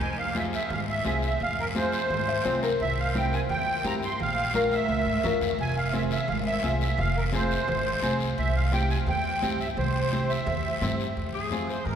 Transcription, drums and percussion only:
0.01 high conga, long guiro
0.35 high conga, short guiro
0.53 short guiro
0.70 high conga, low conga, long guiro
1.05 high conga, short guiro
1.22 short guiro
1.40 high conga, long guiro
1.75 high conga, short guiro
1.92 short guiro
2.10 high conga, low conga, long guiro
2.45 high conga, short guiro
2.63 short guiro
2.80 high conga, long guiro
3.15 high conga, short guiro
3.33 short guiro
3.49 high conga, low conga, long guiro
3.85 high conga, short guiro
4.03 short guiro
4.19 high conga, low conga, long guiro
4.54 high conga, short guiro
4.71 high conga, short guiro
4.88 high conga, long guiro
5.06 high conga
5.24 low conga, short guiro
5.41 low conga, short guiro
5.59 high conga, long guiro
5.93 high conga, short guiro
6.11 short guiro
6.28 high conga, low conga, long guiro
6.63 high conga, short guiro
6.81 short guiro
6.98 high conga, low conga, long guiro
7.33 high conga, short guiro
7.51 short guiro
7.68 high conga, low conga, long guiro
8.02 high conga, short guiro
8.20 short guiro
8.38 high conga, long guiro
8.72 high conga, short guiro
8.90 short guiro
9.07 high conga, low conga, long guiro
9.42 high conga, short guiro
9.61 short guiro
9.77 high conga, low conga, long guiro
10.12 high conga, short guiro
10.30 short guiro
10.46 high conga, low conga, long guiro
10.81 high conga, low conga, short guiro
11.00 short guiro
11.17 long guiro
11.51 high conga, short guiro
11.69 short guiro
11.86 low conga, long guiro

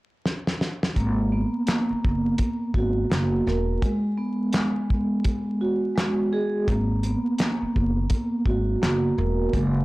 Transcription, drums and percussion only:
0.25 snare
0.47 snare
0.61 snare
0.83 snare
0.96 kick, closed hi-hat
1.67 snare, clap, closed hi-hat
2.04 kick
2.38 kick, closed hi-hat
2.74 kick
3.12 snare, clap, closed hi-hat
3.47 snare
3.82 kick, closed hi-hat
4.53 snare, clap, closed hi-hat
4.90 kick
5.24 kick, closed hi-hat
5.98 snare, clap, closed hi-hat
6.68 kick, closed hi-hat
7.03 closed hi-hat
7.38 snare, clap, closed hi-hat
7.76 kick
8.10 kick, closed hi-hat
8.46 kick
8.83 snare, clap, closed hi-hat
9.53 kick, closed hi-hat

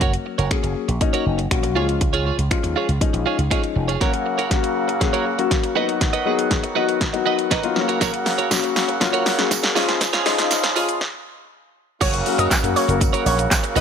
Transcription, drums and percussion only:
0.01 kick, closed hi-hat
0.14 closed hi-hat
0.39 closed hi-hat
0.51 finger snap, kick, closed hi-hat
0.64 closed hi-hat
0.89 closed hi-hat
1.01 kick, closed hi-hat
1.14 closed hi-hat
1.39 closed hi-hat
1.51 finger snap, kick, closed hi-hat
1.64 closed hi-hat
1.89 closed hi-hat
2.01 kick, closed hi-hat
2.14 closed hi-hat
2.39 closed hi-hat
2.51 finger snap, kick, closed hi-hat
2.64 closed hi-hat
2.89 closed hi-hat
3.01 kick, closed hi-hat
3.14 closed hi-hat
3.39 closed hi-hat
3.51 finger snap, kick, closed hi-hat
3.64 closed hi-hat
3.89 closed hi-hat
4.01 kick, snare, closed hi-hat
4.14 closed hi-hat
4.39 closed hi-hat
4.51 kick, snare, closed hi-hat
4.64 closed hi-hat
4.89 closed hi-hat
5.01 kick, snare, closed hi-hat
5.14 closed hi-hat
5.39 closed hi-hat
5.51 kick, snare, closed hi-hat
5.64 closed hi-hat
5.89 closed hi-hat
6.01 kick, snare, closed hi-hat
6.13 closed hi-hat
6.39 closed hi-hat
6.51 kick, snare, closed hi-hat
6.64 closed hi-hat
6.89 closed hi-hat
7.01 kick, snare, closed hi-hat
7.14 closed hi-hat
7.39 closed hi-hat
7.51 kick, snare, closed hi-hat
7.63 closed hi-hat
7.76 snare
7.89 closed hi-hat
8.01 kick, snare, closed hi-hat, tambourine
8.14 closed hi-hat
8.26 snare, open hi-hat, tambourine
8.39 closed hi-hat
8.51 kick, snare, closed hi-hat, tambourine
8.64 closed hi-hat
8.76 snare, open hi-hat, tambourine
8.89 closed hi-hat
9.01 kick, snare, closed hi-hat, tambourine
9.14 closed hi-hat
9.26 snare, open hi-hat, tambourine
9.39 snare, closed hi-hat
9.51 kick, snare, closed hi-hat, tambourine
9.63 snare, closed hi-hat
9.76 snare, open hi-hat, tambourine
9.89 snare, closed hi-hat
10.01 kick, snare, closed hi-hat, tambourine, shaker
10.13 snare, closed hi-hat, shaker
10.26 snare, open hi-hat, tambourine, shaker
10.38 snare, closed hi-hat, shaker
10.51 snare, closed hi-hat, tambourine, shaker
10.64 snare, closed hi-hat, shaker
10.76 open hi-hat, tambourine, shaker
10.89 closed hi-hat, shaker
11.01 kick, snare
12.01 kick, closed hi-hat, crash, tambourine, shaker
12.14 closed hi-hat, shaker
12.26 open hi-hat, tambourine, shaker
12.39 closed hi-hat, shaker
12.51 kick, snare, clap, closed hi-hat, tambourine, shaker
12.64 closed hi-hat, shaker
12.76 open hi-hat, tambourine, shaker
12.89 closed hi-hat, shaker
13.01 kick, closed hi-hat, tambourine, shaker
13.14 closed hi-hat, shaker
13.26 open hi-hat, tambourine, shaker
13.39 closed hi-hat, shaker
13.51 kick, snare, clap, closed hi-hat, tambourine, shaker
13.64 closed hi-hat, shaker
13.76 open hi-hat, tambourine, shaker

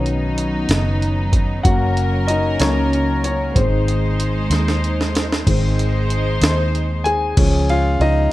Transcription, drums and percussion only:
0.06 closed hi-hat
0.38 closed hi-hat
0.69 snare, closed hi-hat
1.02 closed hi-hat
1.33 kick, closed hi-hat
1.65 kick, closed hi-hat
1.97 closed hi-hat
2.28 closed hi-hat
2.60 snare, closed hi-hat
2.93 closed hi-hat
3.24 closed hi-hat
3.56 kick, closed hi-hat
3.88 closed hi-hat
4.20 closed hi-hat
4.51 snare, closed hi-hat
4.68 snare
4.84 closed hi-hat
5.01 snare
5.15 snare, closed hi-hat
5.32 snare
5.47 kick, closed hi-hat, crash
5.79 closed hi-hat
6.10 closed hi-hat
6.42 snare, closed hi-hat
6.75 closed hi-hat
7.06 closed hi-hat
7.37 kick, crash, ride
7.69 ride
8.01 ride

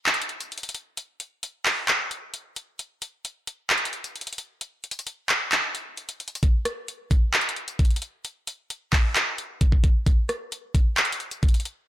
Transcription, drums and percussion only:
0.06 clap, closed hi-hat
0.14 closed hi-hat
0.22 closed hi-hat
0.29 closed hi-hat
0.41 closed hi-hat
0.52 closed hi-hat
0.58 closed hi-hat
0.63 closed hi-hat
0.69 closed hi-hat
0.75 closed hi-hat
0.97 closed hi-hat
1.20 closed hi-hat
1.43 closed hi-hat
1.66 clap, open hi-hat
1.88 clap, closed hi-hat
2.11 closed hi-hat
2.34 closed hi-hat
2.56 closed hi-hat
2.79 closed hi-hat
3.02 closed hi-hat
3.25 closed hi-hat
3.47 closed hi-hat
3.70 clap, closed hi-hat
3.78 closed hi-hat
3.85 closed hi-hat
3.93 closed hi-hat
4.04 closed hi-hat
4.16 closed hi-hat
4.21 closed hi-hat
4.27 closed hi-hat
4.33 closed hi-hat
4.38 closed hi-hat
4.61 closed hi-hat
4.84 closed hi-hat
4.91 closed hi-hat
4.99 closed hi-hat
5.07 closed hi-hat
5.29 clap, closed hi-hat
5.52 clap, closed hi-hat
5.75 closed hi-hat
5.97 closed hi-hat
6.09 closed hi-hat
6.20 closed hi-hat, open hi-hat
6.28 closed hi-hat
6.35 closed hi-hat
6.43 kick, closed hi-hat
6.65 cross-stick, closed hi-hat
6.88 closed hi-hat
7.11 kick, closed hi-hat
7.34 clap, closed hi-hat
7.41 closed hi-hat
7.49 closed hi-hat
7.56 closed hi-hat
7.68 closed hi-hat
7.79 kick, closed hi-hat
7.85 closed hi-hat
7.91 closed hi-hat
7.96 closed hi-hat
8.02 closed hi-hat
8.25 closed hi-hat
8.47 closed hi-hat
8.70 closed hi-hat
8.93 kick, clap, open hi-hat
9.16 clap, closed hi-hat
9.38 closed hi-hat
9.61 kick, closed hi-hat
9.72 kick
9.84 kick, closed hi-hat
10.06 kick, closed hi-hat
10.29 cross-stick, closed hi-hat
10.52 closed hi-hat
10.75 kick, closed hi-hat
10.97 clap, closed hi-hat
11.05 closed hi-hat
11.12 closed hi-hat
11.20 closed hi-hat
11.31 closed hi-hat
11.43 kick, closed hi-hat
11.48 closed hi-hat
11.54 closed hi-hat
11.60 closed hi-hat
11.65 closed hi-hat

